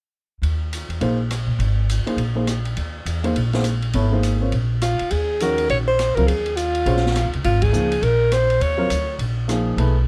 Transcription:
0.42 0.86 D#2 medium
0.42 ride soft
0.73 hi-hat pedal soft
0.73 ride medium
0.89 1.00 E2 soft
0.89 ride soft
1.01 1.45 A#1 medium
1.01 1.17 A#3 medium
1.01 1.18 D#4 soft
1.01 1.18 G#4 soft
1.01 1.18 C5 medium
1.01 ride soft
1.31 cross-stick medium
1.31 hi-hat pedal soft
1.31 ride medium
1.47 1.58 A#2 medium
1.59 2.03 G#1 medium
1.59 ride soft
1.89 hi-hat pedal soft
1.89 ride medium
2.06 2.17 A#3 soft
2.06 2.17 D#4 soft
2.06 2.17 G#4 soft
2.06 2.18 C5 medium
2.06 ride soft
2.17 2.73 A#1 medium
2.17 ride soft
2.35 2.46 A#3 soft
2.35 2.46 D#4 soft
2.35 2.47 G#4 soft
2.35 2.47 C5 soft
2.47 cross-stick medium
2.47 hi-hat pedal soft
2.47 ride soft
2.65 ride soft
2.77 3.04 D#2 medium
2.77 ride soft
3.05 3.33 E2 medium
3.05 hi-hat pedal soft
3.05 ride medium
3.24 3.34 A#3 medium
3.24 3.34 D#4 soft
3.24 3.34 G#4 soft
3.24 3.35 C5 medium
3.24 ride soft
3.36 3.91 A#1 medium
3.36 ride soft
3.53 3.64 A#3 medium
3.53 3.64 D#4 soft
3.53 3.64 G#4 soft
3.53 3.64 C5 medium
3.53 snare soft
3.53 ride soft
3.64 cross-stick soft
3.64 hi-hat pedal medium
3.64 ride medium
3.82 ride soft
3.93 4.49 G#1 medium
3.93 4.10 B3 soft
3.93 4.10 E4 soft
3.93 4.11 A4 soft
3.93 4.11 C#5 medium
3.93 ride soft
4.12 4.37 A#3 soft
4.12 4.38 D#4 medium
4.12 4.38 G#4 soft
4.12 4.38 C5 soft
4.23 hi-hat pedal soft
4.23 ride soft
4.41 4.51 C4 soft
4.41 4.52 F4 soft
4.41 4.52 A#4 soft
4.41 4.52 C#5 soft
4.52 4.96 A#1 medium
4.52 ride soft
4.82 5.12 F4 medium
4.82 cross-stick medium
4.82 hi-hat pedal medium
4.82 ride medium
4.99 muted upright bass stroke soft
4.99 ride soft
5.11 5.66 D#2 medium
5.11 5.44 G#4 medium
5.11 ride medium
5.40 5.84 D#3 medium
5.40 5.84 G#3 medium
5.40 5.84 C#4 soft
5.40 5.85 F#4 medium
5.40 5.70 A#4 medium
5.40 hi-hat pedal medium
5.40 ride medium
5.58 ride soft
5.69 6.13 A#1 medium
5.69 5.78 C#5 medium
5.69 ride soft
5.87 6.16 C5 medium
5.99 cross-stick medium
5.99 hi-hat pedal soft
5.99 ride medium
6.15 6.27 C#2 medium
6.15 6.27 F#3 medium
6.15 6.27 C4 medium
6.15 6.27 F4 medium
6.15 6.28 A#4 medium
6.15 ride soft
6.27 6.83 D#2 medium
6.27 6.58 G#4 medium
6.27 ride medium
6.46 ride soft
6.56 7.33 F4 medium
6.56 hi-hat pedal medium
6.56 ride medium
6.75 ride soft
6.86 7.22 A#1 medium
6.86 7.02 G#3 medium
6.86 7.02 C#4 medium
6.86 7.02 F#4 soft
6.86 7.03 C5 medium
6.86 ride medium
6.96 snare soft
7.06 snare soft
7.16 cross-stick medium
7.16 hi-hat pedal soft
7.16 ride medium
7.25 7.34 D#2 medium
7.33 7.44 C#2 medium
7.33 ride soft
7.44 7.71 G#1 medium
7.44 7.64 F4 medium
7.44 ride medium
7.62 8.05 G#4 medium
7.62 kick medium
7.62 ride medium
7.72 8.00 C#2 medium
7.72 7.89 F3 medium
7.72 7.89 A#3 soft
7.72 7.89 D#4 soft
7.72 7.89 G#4 medium
7.72 hi-hat pedal medium
7.92 ride soft
8.02 8.58 A#1 medium
8.02 8.35 A#4 medium
8.02 ride medium
8.32 8.63 C5 medium
8.32 cross-stick medium
8.32 hi-hat pedal soft
8.32 ride medium
8.50 ride soft
8.60 8.88 D#2 medium
8.60 9.20 C#5 medium
8.60 ride medium
8.77 8.88 F#3 medium
8.77 8.88 C4 soft
8.77 8.88 F4 medium
8.77 8.89 A#4 medium
8.90 9.17 D2 medium
8.90 hi-hat pedal medium
8.90 ride medium
9.19 9.74 A#1 medium
9.19 ride soft
9.48 9.77 F3 medium
9.48 9.77 A#3 soft
9.48 9.77 D#4 medium
9.48 9.77 G#4 medium
9.48 cross-stick medium
9.48 hi-hat pedal medium
9.48 ride medium
9.77 10.08 B1 medium
9.77 9.94 A3 medium
9.77 9.94 D#4 soft
9.77 9.94 G#4 soft
9.77 9.95 B4 medium
9.77 ride soft

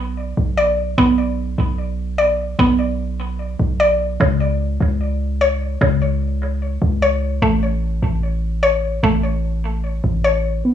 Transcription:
0.00 0.33 B1 loud
0.00 0.58 B3 loud
0.00 0.17 D5 medium
0.37 0.95 B1 loud
0.58 1.78 D5 medium
0.98 1.56 B1 loud
0.98 2.19 B3 loud
1.58 2.55 B1 loud
2.18 3.39 D5 medium
2.59 3.56 B1 loud
2.59 3.80 B3 loud
3.59 4.18 B1 loud
3.80 4.20 D5 loud
4.20 4.78 C#2 loud
4.20 5.41 C#3 loud
4.80 5.77 C#2 loud
5.41 6.62 C#5 loud
5.81 6.78 C#2 loud
5.81 7.02 C#3 medium
6.82 7.40 C#2 loud
7.02 7.42 C#5 loud
7.42 8.00 A1 loud
7.42 8.63 A3 medium
8.03 8.99 A1 loud
8.63 9.84 C#5 loud
9.03 10.00 A1 loud
9.03 10.24 A3 medium
10.04 10.62 A1 loud
10.24 10.64 C#5 medium
10.65 10.74 B3 medium

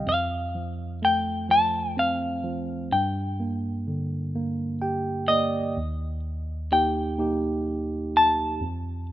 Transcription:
0.06 2.87 F2 medium
0.06 0.98 F5 medium
0.55 1.48 F3 soft
1.02 2.87 A3 soft
1.02 1.51 G5 medium
1.49 2.43 F3 soft
1.49 1.99 A5 medium
1.97 2.89 C4 soft
1.97 2.92 F5 medium
2.44 2.90 F3 soft
2.92 5.73 G2 medium
2.92 4.78 G5 medium
3.40 4.34 A#3 soft
3.87 5.73 D3 soft
4.35 5.28 A#3 soft
4.82 5.74 G4 soft
4.82 5.26 G5 soft
5.28 5.75 A#3 soft
5.28 5.73 D5 soft
5.28 6.19 D#5 medium
5.77 8.57 D#2 soft
6.72 7.18 A#3 soft
6.72 7.17 D#4 soft
6.72 7.18 G4 soft
6.72 8.16 G5 medium
7.19 8.11 A#3 soft
7.19 8.11 D#4 soft
7.19 8.11 G4 soft
8.17 9.06 A5 medium
8.61 9.12 F2 medium

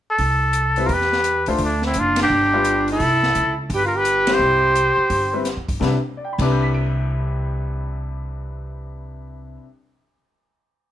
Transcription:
0.10 0.88 A4 medium
0.18 0.86 C2 medium
0.18 kick soft
0.18 open hi-hat soft
0.53 closed hi-hat soft
0.76 0.89 G3 soft
0.76 0.89 C4 soft
0.76 0.89 E4 medium
0.76 0.89 B4 medium
0.76 open hi-hat soft
0.85 1.44 E2 medium
0.85 0.92 F4 soft
0.85 0.95 A#4 medium
0.85 kick soft
0.85 open hi-hat soft
0.90 1.48 G4 medium
0.90 1.50 B4 medium
1.01 snare soft
1.12 snare soft
1.24 closed hi-hat soft
1.46 1.58 C#2 medium
1.46 1.59 A3 medium
1.46 1.59 D4 medium
1.46 1.59 F4 medium
1.46 1.59 C5 medium
1.46 open hi-hat soft
1.58 1.92 D2 medium
1.58 kick soft
1.58 open hi-hat soft
1.63 1.83 A3 medium
1.63 1.83 D4 medium
1.82 2.01 E4 medium
1.82 snare soft
1.86 2.00 C4 medium
1.94 2.28 F#1 medium
1.94 closed hi-hat soft
1.98 2.20 D4 medium
1.98 2.21 F4 medium
2.16 snare medium
2.16 ride medium
2.22 2.87 D4 medium
2.22 2.87 G4 medium
2.30 2.97 G1 medium
2.53 2.99 G3 medium
2.53 2.98 D4 medium
2.53 2.99 F4 medium
2.53 2.99 B4 medium
2.65 closed hi-hat soft
2.88 open hi-hat soft
2.92 3.57 E4 medium
2.92 3.57 A4 medium
3.00 3.33 C2 medium
3.00 kick soft
3.00 open hi-hat soft
3.23 snare soft
3.35 3.68 C#2 medium
3.35 closed hi-hat soft
3.70 4.37 G1 medium
3.70 kick soft
3.70 open hi-hat soft
3.74 3.84 G4 medium
3.74 3.86 B4 medium
3.85 3.97 F4 medium
3.85 3.99 A#4 medium
3.96 4.31 G4 medium
3.96 4.35 B4 loud
4.05 closed hi-hat soft
4.27 4.74 G3 medium
4.27 4.74 C4 soft
4.27 4.74 E4 soft
4.27 5.47 G4 medium
4.27 4.74 C5 medium
4.27 snare medium
4.27 ride medium
4.34 5.49 C5 medium
4.39 4.94 C2 medium
4.75 closed hi-hat soft
4.97 muted upright bass stroke soft
5.10 5.54 G1 medium
5.10 kick soft
5.10 open hi-hat soft
5.33 5.45 G3 medium
5.33 5.45 C4 soft
5.33 5.45 E4 soft
5.33 5.45 B4 medium
5.45 snare soft
5.45 closed hi-hat soft
5.57 5.68 E2 soft
5.68 5.80 G2 medium
5.68 kick soft
5.68 open hi-hat soft
5.80 5.94 C2 medium
5.80 5.94 C3 medium
5.80 5.95 G3 medium
5.80 5.95 D4 medium
5.80 5.96 E4 medium
5.80 5.96 B4 medium
5.80 kick soft
5.80 snare soft
6.17 9.36 D5 soft
6.24 9.43 G5 soft
6.33 9.51 B5 soft
6.38 9.57 C2 medium
6.38 9.62 C3 medium
6.38 9.63 G3 soft
6.38 9.64 D4 medium
6.38 9.64 E4 medium
6.38 9.60 D6 soft
6.38 kick soft
6.38 crash soft
6.43 9.65 B4 medium
6.52 9.70 G6 soft
6.63 9.81 B6 soft
6.74 9.93 D7 soft

